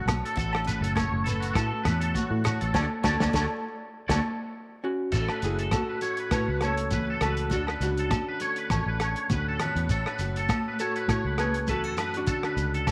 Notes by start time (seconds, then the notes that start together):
Already playing: A2 D3 A3 C#4 F#4
0.06 B1 C#5, cross-stick, closed hi-hat, high conga, low agogo, shekere
0.25 A4, closed hi-hat
0.36 A1 A2 F#4 A4, kick, closed hi-hat, muted conga, shekere
0.53 cross-stick, low agogo
0.64 C#4 B4, closed hi-hat, muted conga, shekere
0.81 F#1 A4, closed hi-hat
0.95 C#5, kick, cross-stick, closed hi-hat, high conga, low agogo, shekere
1.12 F#1
1.24 A3 A4 B4, closed hi-hat, muted conga
1.28 shekere
1.40 F#4, closed hi-hat
1.45 shekere
1.53 A2 F#4 A4, kick, cross-stick, closed hi-hat, muted conga, low agogo
1.58 shekere
1.83 E2 E3 B4 C#5, cross-stick, closed hi-hat, high conga, low agogo, shekere
2.00 A4, closed hi-hat
2.14 F#4, kick, closed hi-hat, high conga, shekere
2.31 A2
2.44 F#4 C#5, cross-stick, closed hi-hat, low agogo, shekere
2.61 A1 A4, closed hi-hat
2.73 D2 D4 F#4 A4 C#5 D5, kick, snare, high conga, low agogo, shekere
3.03 D2 D4 F#4 A4 C#5 D5, kick, snare, high conga, low agogo, shekere
3.19 D2 D4 F#4 A4 C#5 D5, kick, snare, high conga, low agogo, shekere
3.33 D2 D4 F#4 A4 C#5 D5, kick, snare, high conga, low agogo, shekere
4.08 D2 D4 F#4 A4 C#5 D5, kick, snare, high conga, low agogo, shekere
4.84 C#4 F#4
5.12 A1 A2 A3 C#4 A4, kick, crash, muted conga, shekere
5.29 B4, cross-stick, low agogo
5.42 F#1 E4 F#4 G#4, closed hi-hat, muted conga, shekere
5.59 A4, closed hi-hat
5.71 F#4 A4, kick, cross-stick, closed hi-hat, high conga, low agogo, shekere
5.89 B4
6.01 A3 F#4 C#5, closed hi-hat, shekere
6.17 B4, closed hi-hat
6.31 A2 F#4 B4 C#5, kick, cross-stick, closed hi-hat, muted conga, low agogo, shekere
6.35 F#4
6.48 C#2 B4
6.61 C#4 C#5, cross-stick, closed hi-hat, high conga, low agogo, shekere
6.66 A4
6.77 closed hi-hat
6.91 E3 F#4 B4, kick, closed hi-hat, high conga, shekere
7.10 A4
7.21 C#2 F#4 A4 B4, cross-stick, closed hi-hat, muted conga, low agogo, shekere
7.25 F#4
7.37 closed hi-hat
7.50 D2 D3 C#4 F#4 A4, kick, closed hi-hat, muted conga, shekere
7.56 D4
7.67 B4, cross-stick, low agogo
7.80 C#2 C#4 F#4, closed hi-hat, muted conga, shekere
7.86 D4
7.97 A4, closed hi-hat
8.11 C#4, kick, cross-stick, closed hi-hat, high conga, low agogo, shekere
8.28 B4
8.40 A3 C#4 C#5, closed hi-hat, shekere
8.56 B4, closed hi-hat
8.70 A1 C#4 C#5, kick, cross-stick, closed hi-hat, muted conga, low conga, low agogo, shekere
8.86 A1 B4
9.00 C#4 C#5, cross-stick, closed hi-hat, low agogo, shekere
9.16 closed hi-hat
9.30 D2 A2 F#4 B4, kick, closed hi-hat, high conga, shekere
9.48 A4
9.60 B4 C#5, cross-stick, closed hi-hat, low conga, low agogo, shekere
9.75 E2, closed hi-hat
9.89 A1 A2 A4 C#5, kick, closed hi-hat, muted conga, shekere
10.06 B4, cross-stick, low agogo
10.19 F#1 F#4, closed hi-hat, muted conga, shekere
10.36 A4, closed hi-hat
10.49 C#5, kick, cross-stick, closed hi-hat, high conga, low agogo, shekere
10.68 B4
10.79 A3 F#4 A4 C#5, closed hi-hat, shekere
10.96 B4, closed hi-hat
11.08 A2 F#4 C#5, kick, cross-stick, closed hi-hat, low agogo, shekere
11.25 C#2 B4
11.38 C#4 G#4 B4 C#5, cross-stick, closed hi-hat, high conga, low agogo, shekere
11.54 closed hi-hat
11.67 E3 E4 F#4 A4 B4, kick, closed hi-hat, high conga, shekere
11.84 F#4 A4
11.97 F#2 F#4 B4, cross-stick, closed hi-hat, muted conga, low agogo, shekere
12.14 D4 F#4, closed hi-hat
12.26 D2 D3 C#4 A4, kick, closed hi-hat, muted conga, shekere
12.43 B4, cross-stick, low agogo
12.57 C#2 C#4, closed hi-hat, muted conga, shekere
12.74 A4, closed hi-hat
12.87 C#4, kick, cross-stick, closed hi-hat, high conga, low agogo, shekere